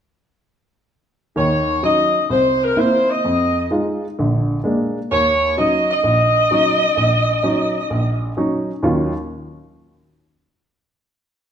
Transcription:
1.36 1.77 D#2 medium
1.36 1.77 D#3 medium
1.36 1.80 C#5 medium
1.83 2.16 F#3 soft
1.83 2.16 C#4 soft
1.83 2.17 D#4 soft
1.83 2.27 D#5 medium
2.30 2.70 C2 medium
2.30 2.62 C5 medium
2.64 2.77 A#4 medium
2.76 3.10 A#3 soft
2.76 3.10 C4 soft
2.76 3.10 E4 medium
2.76 3.09 C5 medium
3.11 3.71 D#5 medium
3.24 3.65 F2 medium
3.71 4.04 G#3 soft
3.71 4.04 D#4 soft
3.71 4.04 F4 soft
4.19 4.58 A#1 medium
4.19 4.58 D3 medium
4.64 4.97 G#3 soft
4.64 4.97 A#3 soft
4.64 4.98 D4 medium
5.11 5.51 D#2 medium
5.11 5.54 C#5 loud
5.57 5.90 F#3 soft
5.57 5.91 C#4 soft
5.57 5.91 D#4 medium
5.57 5.89 D#5 medium
5.91 8.33 D#5 loud
6.03 6.44 A#1 medium
6.51 6.84 F#3 medium
6.51 6.84 C#4 soft
6.51 6.84 D#4 soft
6.97 7.37 A#1 medium
7.43 7.77 F#3 soft
7.43 7.77 C#4 soft
7.43 7.77 D#4 medium
7.90 8.30 A#1 medium
8.37 8.70 F#3 soft
8.37 8.70 C#4 soft
8.37 8.70 D#4 medium
8.83 9.11 D#2 medium
8.83 9.12 D#3 medium
8.83 9.12 F#3 soft
8.83 9.12 C#4 soft
8.83 9.12 F4 medium

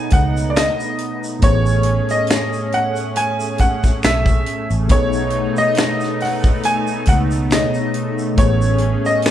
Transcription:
0.00 1.37 B2 medium
0.00 9.31 A3 medium
0.00 1.38 B3 medium
0.00 1.39 B3 medium
0.00 1.38 D#4 medium
0.00 1.39 D#4 loud
0.00 1.39 G#4 medium
0.00 1.40 A4 medium
0.00 1.44 C#5 medium
0.10 0.68 C#2 medium
0.10 0.50 F#5 loud
0.10 kick medium
0.10 closed hi-hat medium
0.10 shaker soft
0.37 closed hi-hat soft
0.37 shaker soft
0.50 0.56 D5 medium
0.56 1.18 D#5 medium
0.56 finger snap medium
0.56 snare loud
0.56 closed hi-hat medium
0.56 shaker medium
0.80 shaker soft
0.98 closed hi-hat medium
1.24 shaker medium
1.39 1.99 A1 loud
1.39 4.84 A2 medium
1.39 4.86 A3 medium
1.39 kick loud
1.39 closed hi-hat medium
1.39 shaker medium
1.43 4.87 B3 medium
1.43 4.87 C#4 medium
1.43 4.87 G#4 medium
1.43 4.88 G#4 medium
1.43 2.12 C#5 loud
1.48 1.52 C5 medium
1.55 4.92 C#5 medium
1.66 shaker soft
1.83 closed hi-hat medium
2.08 2.75 D#5 loud
2.08 closed hi-hat soft
2.08 shaker medium
2.27 finger snap medium
2.27 snare loud
2.27 closed hi-hat medium
2.27 shaker medium
2.53 shaker soft
2.72 3.18 F#5 loud
2.72 closed hi-hat medium
2.96 closed hi-hat soft
2.96 shaker soft
3.16 3.61 G#5 loud
3.16 closed hi-hat medium
3.16 shaker medium
3.40 shaker medium
3.58 4.05 F#5 loud
3.58 kick medium
3.58 closed hi-hat medium
3.58 shaker soft
3.84 kick medium
3.84 snare soft
3.84 shaker medium
4.03 4.40 B1 loud
4.03 4.66 E5 medium
4.03 finger snap medium
4.03 snare loud
4.03 closed hi-hat medium
4.03 shaker medium
4.26 kick loud
4.26 shaker soft
4.46 closed hi-hat medium
4.70 4.90 A1 medium
4.70 closed hi-hat soft
4.70 shaker medium
4.87 5.46 B1 loud
4.87 7.45 B2 medium
4.87 7.46 B3 medium
4.87 8.34 B3 medium
4.87 8.34 D#4 medium
4.87 7.47 D#4 medium
4.87 kick loud
4.87 closed hi-hat medium
4.87 shaker medium
4.92 7.48 G#4 medium
4.92 7.49 A4 medium
4.92 5.59 C#5 loud
4.96 5.00 B4 medium
5.03 7.53 C#5 medium
5.13 shaker soft
5.30 closed hi-hat medium
5.57 6.17 D#5 loud
5.57 shaker medium
5.75 finger snap medium
5.75 snare loud
5.75 closed hi-hat medium
5.75 shaker medium
6.00 snare soft
6.00 shaker soft
6.20 6.66 F#5 medium
6.20 snare soft
6.20 open hi-hat medium
6.43 kick loud
6.43 shaker soft
6.63 7.05 G#5 loud
6.63 closed hi-hat medium
6.63 shaker medium
6.87 shaker medium
7.06 7.64 C#2 medium
7.06 7.18 F#5 loud
7.06 kick medium
7.06 closed hi-hat medium
7.06 shaker soft
7.31 closed hi-hat soft
7.31 shaker medium
7.49 8.37 B2 soft
7.49 8.38 B3 soft
7.49 8.38 D#4 soft
7.49 8.38 G#4 soft
7.49 8.39 A4 soft
7.49 8.14 D#5 medium
7.49 finger snap medium
7.49 snare loud
7.49 closed hi-hat medium
7.49 shaker medium
7.54 7.59 C#5 soft
7.60 8.43 D#5 medium
7.74 shaker soft
7.94 closed hi-hat medium
8.18 shaker medium
8.35 8.94 A1 loud
8.35 9.31 A2 medium
8.35 9.31 A3 medium
8.35 9.31 C#4 medium
8.35 9.07 C#5 medium
8.35 kick loud
8.35 closed hi-hat medium
8.39 9.31 B3 medium
8.39 9.31 G#4 medium
8.39 shaker medium
8.43 8.48 C5 medium
8.50 9.31 C#5 medium
8.62 shaker medium
8.78 closed hi-hat medium
9.05 9.31 D#5 medium
9.05 shaker medium
9.22 finger snap medium
9.22 snare loud
9.22 closed hi-hat medium
9.27 finger snap medium
9.27 shaker medium

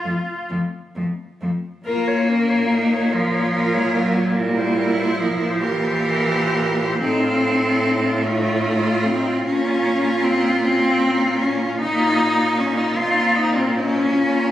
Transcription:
0.00 0.12 A3 soft
0.00 0.48 F4 medium
0.05 0.13 F2 soft
0.05 0.14 F3 soft
0.50 0.58 F2 soft
0.50 0.59 F3 soft
0.50 0.58 A3 soft
0.95 1.04 F2 soft
0.95 1.05 F3 soft
0.95 1.03 A3 soft
1.41 1.50 F2 soft
1.41 1.50 F3 soft
1.41 1.49 A3 soft
1.85 7.02 A#2 medium
1.85 3.16 A#3 loud
1.85 2.30 F4 medium
1.85 2.09 A#4 medium
2.08 2.30 C#5 medium
2.28 2.74 C#4 medium
2.28 2.51 A#4 medium
2.49 2.71 C#5 medium
2.72 3.16 D#4 medium
2.72 2.95 A#4 medium
2.93 3.14 C#5 medium
3.13 3.76 F3 loud
3.13 4.37 F4 medium
3.13 3.35 A#4 medium
3.34 3.54 C#5 medium
3.55 3.75 A#4 medium
3.73 3.94 G#3 medium
3.73 3.96 C#5 medium
3.93 4.37 F#3 medium
3.93 4.17 A#4 medium
4.15 4.35 C#5 medium
4.35 5.20 G3 loud
4.35 5.60 E4 medium
4.35 4.59 A#4 medium
4.58 4.79 C5 medium
4.78 5.00 A#4 medium
4.99 5.19 C5 medium
5.18 5.62 F3 medium
5.18 5.43 A#4 medium
5.42 5.64 C5 medium
5.60 7.00 E3 loud
5.60 6.97 G4 medium
5.60 5.85 A#4 medium
5.84 6.07 C5 medium
6.07 6.33 A#4 medium
6.32 6.57 C5 medium
6.55 6.80 A#4 medium
6.79 7.01 C5 medium
7.00 9.44 A2 medium
7.00 8.25 C4 loud
7.00 7.25 D#4 medium
7.00 8.25 A4 medium
7.23 7.46 F4 medium
7.45 7.67 D#4 medium
7.66 7.84 F4 medium
7.85 8.05 D#4 medium
8.04 8.27 F4 medium
8.23 9.06 A3 loud
8.23 8.46 D#4 medium
8.23 9.44 F4 medium
8.45 8.65 F4 medium
8.65 8.89 D#4 medium
8.87 9.07 F4 medium
9.04 9.46 C4 loud
9.04 9.28 D#4 medium
9.27 9.46 F4 medium
9.44 11.76 A#2 medium
9.44 10.25 C#4 loud
9.44 9.67 C#4 medium
9.44 11.76 F4 loud
9.66 9.87 F4 medium
9.85 10.07 C#4 medium
10.05 10.24 F4 medium
10.24 10.63 C4 loud
10.24 10.47 C#4 medium
10.46 10.65 F4 medium
10.64 11.43 C4 loud
10.64 10.86 C#4 medium
10.84 11.03 F4 medium
11.04 11.24 C#4 medium
11.23 11.44 F4 medium
11.41 11.80 C#4 loud
11.41 11.63 C#4 medium
11.62 11.80 F4 medium
11.80 12.83 A#2 medium
11.80 12.60 D#4 loud
11.80 12.95 D#4 medium
11.80 12.01 D#4 medium
12.00 12.21 F4 medium
12.20 12.39 D#4 medium
12.37 12.56 F4 medium
12.56 12.79 C#4 loud
12.56 12.77 D#4 medium
12.76 12.98 D#4 medium
12.76 12.96 F4 medium
12.95 13.99 A#2 medium
12.95 14.13 C4 medium
12.95 13.19 D#4 medium
12.95 13.37 F4 loud
13.17 13.36 F4 medium
13.36 13.57 D#4 loud
13.36 13.57 D#4 medium
13.55 13.75 C4 medium
13.55 13.77 F4 medium
13.74 14.51 C#4 loud
13.74 13.95 D#4 medium
13.93 14.10 F4 medium
14.11 14.51 A#2 medium
14.11 14.32 C#4 medium
14.11 14.51 F4 medium
14.31 14.51 F4 medium

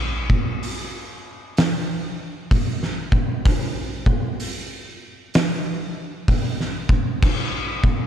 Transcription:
0.30 kick medium
0.63 open hi-hat medium
1.57 snare loud
1.57 open hi-hat medium
2.51 kick medium
2.51 open hi-hat medium
2.83 snare soft
3.12 kick medium
3.45 kick loud
3.45 open hi-hat medium
4.06 kick medium
4.40 open hi-hat medium
5.34 snare loud
5.34 open hi-hat medium
6.28 kick medium
6.28 open hi-hat medium
6.60 snare soft
6.89 kick loud
7.22 kick loud
7.22 crash loud
7.84 kick medium

